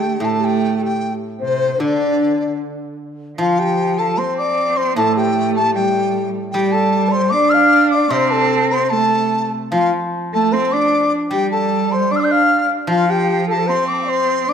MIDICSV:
0, 0, Header, 1, 5, 480
1, 0, Start_track
1, 0, Tempo, 792602
1, 130, Time_signature, 2, 2, 24, 8
1, 8801, End_track
2, 0, Start_track
2, 0, Title_t, "Dizi"
2, 0, Program_c, 0, 73
2, 0, Note_on_c, 0, 79, 89
2, 148, Note_on_c, 0, 81, 84
2, 157, Note_off_c, 0, 79, 0
2, 269, Note_on_c, 0, 79, 83
2, 278, Note_off_c, 0, 81, 0
2, 499, Note_off_c, 0, 79, 0
2, 514, Note_on_c, 0, 79, 82
2, 687, Note_off_c, 0, 79, 0
2, 871, Note_on_c, 0, 72, 85
2, 1085, Note_off_c, 0, 72, 0
2, 1110, Note_on_c, 0, 74, 83
2, 1559, Note_off_c, 0, 74, 0
2, 2063, Note_on_c, 0, 77, 81
2, 2175, Note_on_c, 0, 79, 74
2, 2184, Note_off_c, 0, 77, 0
2, 2413, Note_on_c, 0, 81, 80
2, 2422, Note_off_c, 0, 79, 0
2, 2531, Note_on_c, 0, 84, 79
2, 2540, Note_off_c, 0, 81, 0
2, 2645, Note_off_c, 0, 84, 0
2, 2649, Note_on_c, 0, 86, 89
2, 2886, Note_on_c, 0, 84, 90
2, 2895, Note_off_c, 0, 86, 0
2, 3004, Note_off_c, 0, 84, 0
2, 3007, Note_on_c, 0, 81, 89
2, 3121, Note_off_c, 0, 81, 0
2, 3128, Note_on_c, 0, 79, 87
2, 3350, Note_off_c, 0, 79, 0
2, 3362, Note_on_c, 0, 81, 89
2, 3476, Note_off_c, 0, 81, 0
2, 3479, Note_on_c, 0, 79, 85
2, 3816, Note_off_c, 0, 79, 0
2, 3949, Note_on_c, 0, 79, 99
2, 4068, Note_on_c, 0, 81, 90
2, 4078, Note_off_c, 0, 79, 0
2, 4308, Note_on_c, 0, 84, 100
2, 4318, Note_off_c, 0, 81, 0
2, 4421, Note_on_c, 0, 86, 105
2, 4430, Note_off_c, 0, 84, 0
2, 4542, Note_on_c, 0, 89, 103
2, 4551, Note_off_c, 0, 86, 0
2, 4783, Note_off_c, 0, 89, 0
2, 4787, Note_on_c, 0, 86, 100
2, 4904, Note_on_c, 0, 84, 99
2, 4913, Note_off_c, 0, 86, 0
2, 5004, Note_off_c, 0, 84, 0
2, 5004, Note_on_c, 0, 84, 64
2, 5027, Note_on_c, 0, 81, 91
2, 5036, Note_off_c, 0, 84, 0
2, 5261, Note_off_c, 0, 81, 0
2, 5265, Note_on_c, 0, 84, 91
2, 5358, Note_off_c, 0, 84, 0
2, 5358, Note_on_c, 0, 84, 64
2, 5386, Note_on_c, 0, 81, 101
2, 5395, Note_off_c, 0, 84, 0
2, 5763, Note_off_c, 0, 81, 0
2, 5884, Note_on_c, 0, 77, 81
2, 6002, Note_off_c, 0, 77, 0
2, 6258, Note_on_c, 0, 81, 90
2, 6376, Note_on_c, 0, 84, 89
2, 6385, Note_off_c, 0, 81, 0
2, 6490, Note_on_c, 0, 86, 94
2, 6499, Note_off_c, 0, 84, 0
2, 6737, Note_off_c, 0, 86, 0
2, 6845, Note_on_c, 0, 79, 100
2, 6964, Note_off_c, 0, 79, 0
2, 6974, Note_on_c, 0, 81, 92
2, 7217, Note_on_c, 0, 84, 99
2, 7226, Note_off_c, 0, 81, 0
2, 7338, Note_on_c, 0, 86, 106
2, 7347, Note_off_c, 0, 84, 0
2, 7365, Note_on_c, 0, 89, 90
2, 7374, Note_off_c, 0, 86, 0
2, 7386, Note_on_c, 0, 86, 96
2, 7395, Note_off_c, 0, 89, 0
2, 7412, Note_on_c, 0, 91, 79
2, 7421, Note_off_c, 0, 86, 0
2, 7457, Note_on_c, 0, 89, 100
2, 7466, Note_off_c, 0, 91, 0
2, 7694, Note_off_c, 0, 89, 0
2, 7813, Note_on_c, 0, 77, 94
2, 7934, Note_on_c, 0, 79, 98
2, 7943, Note_off_c, 0, 77, 0
2, 8168, Note_off_c, 0, 79, 0
2, 8172, Note_on_c, 0, 81, 98
2, 8292, Note_on_c, 0, 84, 100
2, 8301, Note_off_c, 0, 81, 0
2, 8411, Note_on_c, 0, 86, 90
2, 8420, Note_off_c, 0, 84, 0
2, 8533, Note_on_c, 0, 84, 103
2, 8542, Note_off_c, 0, 86, 0
2, 8776, Note_on_c, 0, 86, 97
2, 8785, Note_off_c, 0, 84, 0
2, 8801, Note_off_c, 0, 86, 0
2, 8801, End_track
3, 0, Start_track
3, 0, Title_t, "Xiao"
3, 0, Program_c, 1, 77
3, 0, Note_on_c, 1, 67, 76
3, 126, Note_on_c, 1, 69, 76
3, 135, Note_off_c, 1, 67, 0
3, 202, Note_off_c, 1, 69, 0
3, 202, Note_on_c, 1, 69, 47
3, 241, Note_on_c, 1, 67, 70
3, 250, Note_off_c, 1, 69, 0
3, 481, Note_off_c, 1, 67, 0
3, 484, Note_on_c, 1, 67, 74
3, 671, Note_off_c, 1, 67, 0
3, 845, Note_on_c, 1, 72, 80
3, 1090, Note_on_c, 1, 62, 69
3, 1099, Note_off_c, 1, 72, 0
3, 1573, Note_off_c, 1, 62, 0
3, 2055, Note_on_c, 1, 65, 63
3, 2173, Note_on_c, 1, 67, 65
3, 2182, Note_off_c, 1, 65, 0
3, 2413, Note_on_c, 1, 69, 65
3, 2422, Note_off_c, 1, 67, 0
3, 2534, Note_on_c, 1, 72, 68
3, 2543, Note_off_c, 1, 69, 0
3, 2659, Note_on_c, 1, 74, 73
3, 2668, Note_off_c, 1, 72, 0
3, 2891, Note_on_c, 1, 72, 80
3, 2900, Note_off_c, 1, 74, 0
3, 3007, Note_off_c, 1, 72, 0
3, 3011, Note_on_c, 1, 69, 81
3, 3132, Note_on_c, 1, 67, 77
3, 3141, Note_off_c, 1, 69, 0
3, 3486, Note_off_c, 1, 67, 0
3, 3490, Note_on_c, 1, 67, 78
3, 3821, Note_off_c, 1, 67, 0
3, 3961, Note_on_c, 1, 67, 84
3, 4082, Note_on_c, 1, 69, 78
3, 4091, Note_off_c, 1, 67, 0
3, 4291, Note_on_c, 1, 74, 62
3, 4300, Note_off_c, 1, 69, 0
3, 4321, Note_on_c, 1, 72, 87
3, 4330, Note_off_c, 1, 74, 0
3, 4440, Note_off_c, 1, 72, 0
3, 4447, Note_on_c, 1, 74, 89
3, 4567, Note_on_c, 1, 77, 89
3, 4576, Note_off_c, 1, 74, 0
3, 4812, Note_on_c, 1, 74, 89
3, 4821, Note_off_c, 1, 77, 0
3, 4929, Note_on_c, 1, 72, 90
3, 4938, Note_off_c, 1, 74, 0
3, 5044, Note_on_c, 1, 69, 83
3, 5053, Note_off_c, 1, 72, 0
3, 5279, Note_on_c, 1, 72, 81
3, 5288, Note_off_c, 1, 69, 0
3, 5396, Note_off_c, 1, 72, 0
3, 5399, Note_on_c, 1, 69, 78
3, 5746, Note_off_c, 1, 69, 0
3, 5889, Note_on_c, 1, 65, 67
3, 6005, Note_off_c, 1, 65, 0
3, 6256, Note_on_c, 1, 69, 76
3, 6372, Note_on_c, 1, 72, 75
3, 6381, Note_off_c, 1, 69, 0
3, 6501, Note_on_c, 1, 74, 80
3, 6510, Note_off_c, 1, 72, 0
3, 6742, Note_off_c, 1, 74, 0
3, 6856, Note_on_c, 1, 67, 82
3, 6970, Note_off_c, 1, 67, 0
3, 6976, Note_on_c, 1, 69, 79
3, 7201, Note_off_c, 1, 69, 0
3, 7221, Note_on_c, 1, 72, 84
3, 7334, Note_on_c, 1, 74, 90
3, 7343, Note_off_c, 1, 72, 0
3, 7396, Note_off_c, 1, 74, 0
3, 7402, Note_on_c, 1, 74, 77
3, 7458, Note_on_c, 1, 77, 96
3, 7467, Note_off_c, 1, 74, 0
3, 7695, Note_off_c, 1, 77, 0
3, 7809, Note_on_c, 1, 65, 85
3, 7921, Note_off_c, 1, 65, 0
3, 7927, Note_on_c, 1, 67, 90
3, 8151, Note_off_c, 1, 67, 0
3, 8159, Note_on_c, 1, 69, 80
3, 8194, Note_on_c, 1, 67, 65
3, 8203, Note_off_c, 1, 69, 0
3, 8227, Note_on_c, 1, 69, 78
3, 8236, Note_off_c, 1, 67, 0
3, 8277, Note_on_c, 1, 72, 79
3, 8286, Note_off_c, 1, 69, 0
3, 8394, Note_off_c, 1, 72, 0
3, 8398, Note_on_c, 1, 86, 34
3, 8413, Note_off_c, 1, 86, 0
3, 8430, Note_on_c, 1, 84, 41
3, 8442, Note_off_c, 1, 84, 0
3, 8445, Note_on_c, 1, 81, 40
3, 8463, Note_off_c, 1, 81, 0
3, 8467, Note_on_c, 1, 79, 44
3, 8485, Note_off_c, 1, 79, 0
3, 8489, Note_on_c, 1, 77, 51
3, 8507, Note_off_c, 1, 77, 0
3, 8511, Note_on_c, 1, 74, 53
3, 8524, Note_on_c, 1, 72, 85
3, 8533, Note_off_c, 1, 74, 0
3, 8765, Note_off_c, 1, 72, 0
3, 8769, Note_on_c, 1, 74, 84
3, 8801, Note_off_c, 1, 74, 0
3, 8801, End_track
4, 0, Start_track
4, 0, Title_t, "Cello"
4, 0, Program_c, 2, 42
4, 0, Note_on_c, 2, 57, 85
4, 125, Note_off_c, 2, 57, 0
4, 129, Note_on_c, 2, 57, 91
4, 662, Note_off_c, 2, 57, 0
4, 855, Note_on_c, 2, 48, 71
4, 1077, Note_off_c, 2, 48, 0
4, 1091, Note_on_c, 2, 50, 72
4, 1549, Note_off_c, 2, 50, 0
4, 2048, Note_on_c, 2, 53, 72
4, 2533, Note_on_c, 2, 60, 76
4, 2542, Note_off_c, 2, 53, 0
4, 3009, Note_on_c, 2, 57, 89
4, 3018, Note_off_c, 2, 60, 0
4, 3482, Note_on_c, 2, 55, 77
4, 3491, Note_off_c, 2, 57, 0
4, 3842, Note_off_c, 2, 55, 0
4, 3955, Note_on_c, 2, 55, 90
4, 4433, Note_on_c, 2, 62, 97
4, 4442, Note_off_c, 2, 55, 0
4, 4906, Note_off_c, 2, 62, 0
4, 4909, Note_on_c, 2, 60, 100
4, 5402, Note_on_c, 2, 57, 81
4, 5411, Note_off_c, 2, 60, 0
4, 5771, Note_off_c, 2, 57, 0
4, 5889, Note_on_c, 2, 53, 61
4, 6005, Note_off_c, 2, 53, 0
4, 6254, Note_on_c, 2, 57, 89
4, 6382, Note_on_c, 2, 60, 87
4, 6391, Note_off_c, 2, 57, 0
4, 6499, Note_on_c, 2, 62, 85
4, 6508, Note_off_c, 2, 60, 0
4, 6741, Note_off_c, 2, 62, 0
4, 6861, Note_on_c, 2, 55, 85
4, 7333, Note_on_c, 2, 62, 94
4, 7342, Note_off_c, 2, 55, 0
4, 7691, Note_off_c, 2, 62, 0
4, 7809, Note_on_c, 2, 53, 86
4, 8287, Note_on_c, 2, 60, 85
4, 8296, Note_off_c, 2, 53, 0
4, 8769, Note_on_c, 2, 62, 94
4, 8778, Note_off_c, 2, 60, 0
4, 8801, Note_off_c, 2, 62, 0
4, 8801, End_track
5, 0, Start_track
5, 0, Title_t, "Guzheng"
5, 0, Program_c, 3, 107
5, 0, Note_on_c, 3, 50, 50
5, 122, Note_on_c, 3, 45, 52
5, 608, Note_off_c, 3, 50, 0
5, 1087, Note_off_c, 3, 45, 0
5, 1089, Note_on_c, 3, 50, 55
5, 2048, Note_on_c, 3, 53, 58
5, 2536, Note_off_c, 3, 50, 0
5, 3006, Note_on_c, 3, 45, 60
5, 3484, Note_off_c, 3, 53, 0
5, 3961, Note_on_c, 3, 55, 58
5, 4437, Note_off_c, 3, 45, 0
5, 4908, Note_on_c, 3, 48, 63
5, 5403, Note_off_c, 3, 55, 0
5, 5884, Note_on_c, 3, 53, 60
5, 5890, Note_off_c, 3, 48, 0
5, 6847, Note_on_c, 3, 55, 54
5, 7334, Note_off_c, 3, 53, 0
5, 7796, Note_on_c, 3, 53, 65
5, 8282, Note_off_c, 3, 55, 0
5, 8801, Note_off_c, 3, 53, 0
5, 8801, End_track
0, 0, End_of_file